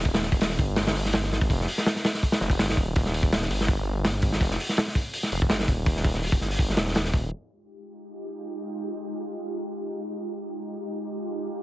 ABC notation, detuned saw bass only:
X:1
M:4/4
L:1/8
Q:"Swing 16ths" 1/4=165
K:Fm
V:1 name="Detuned saw bass" clef=bass
E,,,3 G,,,4 A,,, | F,,, z4 F,,, G,,, E,,,- | E,,,3 G,,,4 A,,, | F,,, z4 F,,, G,,, E,,,- |
E,,,3 G,,,2 E,,,3 | z8 | z8 | z8 |]